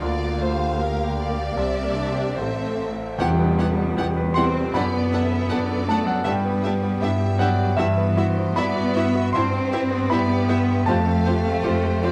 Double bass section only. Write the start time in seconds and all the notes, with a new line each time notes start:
0.03 D2
1.58 C2
2.38 A1
3.19 E2
3.97 E2
4.74 F#2
5.50 F#2
6.25 G2
7.01 G2
7.78 G2
8.56 G2
9.33 G2
10.11 G2
10.87 F2
11.64 F2